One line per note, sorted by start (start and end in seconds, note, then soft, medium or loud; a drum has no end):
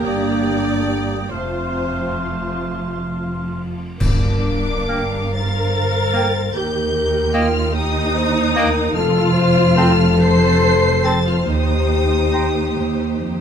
0.00 1.29 A#3 medium
0.00 1.29 G4 medium
0.00 1.28 G5 medium
0.00 1.28 A#5 medium
0.00 1.29 D#6 medium
0.05 1.32 G1 medium
0.05 1.33 G2 medium
0.05 1.15 D4 medium
0.05 1.33 D5 loud
1.31 3.75 F1 medium
1.31 3.75 F2 medium
1.31 3.79 F3 medium
1.31 3.62 A3 medium
1.31 2.62 C4 medium
1.31 3.75 F4 medium
1.31 2.65 C5 medium
1.31 3.61 F5 medium
1.31 3.75 A5 medium
1.31 3.62 C6 medium
3.98 6.51 G1 medium
3.98 6.51 G2 medium
3.98 5.30 G2 loud
3.98 5.30 D4 medium
3.98 5.29 A#4 medium
3.98 6.51 A#4 medium
3.98 6.51 F5 medium
3.98 5.30 D6 loud
3.98 concert bass drum medium
3.98 crash medium
4.88 5.05 A#3 medium
4.88 5.05 F5 medium
4.88 5.10 G5 medium
5.34 6.56 A#4 loud
5.34 6.55 C5 medium
5.34 6.55 A6 loud
6.13 6.28 A#3 medium
6.13 6.29 F5 medium
6.13 6.34 G5 medium
6.55 8.90 D#2 medium
6.55 8.91 D#2 medium
6.55 8.90 G4 medium
6.55 7.35 G4 medium
6.55 7.72 A#4 loud
6.55 8.90 D#5 medium
6.55 7.35 G6 loud
7.34 7.48 A#3 loud
7.34 7.75 F4 medium
7.34 7.49 D#5 medium
7.34 7.53 G5 medium
7.34 7.75 F6 loud
7.74 8.92 D#4 loud
7.74 8.15 G4 medium
7.74 8.92 D#6 loud
8.15 8.55 C5 loud
8.55 8.70 A#3 loud
8.55 8.95 A#4 medium
8.55 8.69 D#5 medium
8.55 8.74 G5 loud
8.94 11.48 F1 loud
8.94 11.48 F2 loud
8.94 10.22 F4 loud
8.94 9.34 A4 loud
8.94 11.44 A4 loud
8.94 13.41 C5 loud
8.94 10.19 F6 loud
9.33 9.76 C5 loud
9.77 9.93 C4 loud
9.77 11.29 A4 loud
9.77 9.93 C5 loud
9.77 9.98 A5 loud
10.21 11.04 C5 loud
10.21 11.05 C7 loud
11.04 11.19 C4 medium
11.04 11.27 A4 loud
11.04 11.21 C5 medium
11.04 11.25 A5 medium
11.04 11.26 A6 loud
11.27 11.48 F4 medium
11.27 11.48 F6 loud
11.46 12.65 D#2 medium
11.46 13.41 D#2 medium
11.46 13.41 D#4 medium
11.46 13.36 G4 medium
11.46 13.41 G4 medium
11.46 13.41 D#6 loud
12.32 12.48 D#4 medium
12.32 12.49 C5 medium
12.32 12.54 G5 medium
12.76 13.16 D#2 medium
13.19 13.41 F2 medium